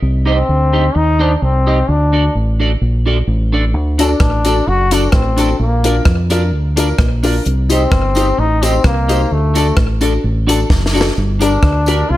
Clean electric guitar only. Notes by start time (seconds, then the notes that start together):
0.26 D#4 G4 C5 D#5
0.73 D#4 G4 C5 D#5
0.95 muted clean electric guitar stroke
1.19 D#4 G4 C5 D#5
1.67 D#4 G4 C5 D#5
2.12 D4 F#4 A4 D5
2.60 D4 F#4 A4 D5
3.06 D4 F#4 A4 D5
3.52 D4 F#4 A4 D5
3.98 D4 F#4 A4 D5
4.45 D4 F#4 A4 D5
4.67 muted clean electric guitar stroke
4.91 D4 F#4 A4 D5
5.37 D4 F#4 A4 D5
5.84 D4 F4 A#4 D5
6.30 D4 F4 A#4 D5
6.76 D4 F4 A#4 D5
7.23 D4 F4 A#4 D5
7.70 D#4 G4 C5 D#5
8.15 D#4 G4 C5 D#5
8.37 muted clean electric guitar stroke
8.62 D#4 G4 C5 D#5
9.08 D#4 G4 C5 D#5
9.54 D4 F#4 A4 D5
10.01 D4 F#4 A4 D5
10.47 D4 F#4 A4 D5
10.93 D4 F#4 A4 D5
11.39 D4 G4 A#4 D5
11.87 D4 G4 A#4 D5
12.09 muted clean electric guitar stroke